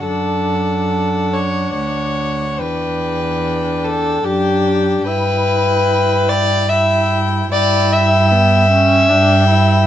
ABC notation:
X:1
M:3/4
L:1/8
Q:1/4=73
K:Edor
V:1 name="Violin"
f6 | g4 g2 | g4 g2 | g4 g2 |]
V:2 name="Violin"
A3 c c2 | B3 A G2 | B3 d e z | d e4- e |]
V:3 name="Viola"
D6 | D4 D2 | E4 E2 | E2 B, C D E |]
V:4 name="Cello" clef=bass
F,,4 D,,2 | E,,4 F,,2 | G,,6 | G,,4 G,,2 |]